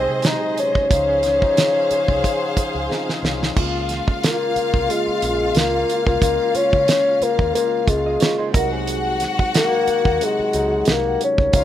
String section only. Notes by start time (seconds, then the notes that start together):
Already playing: G#4 C5 D#5
0.90 G#4 C5 F5
3.56 F4 F5
8.54 F#4 F#5
11.54 F4 F5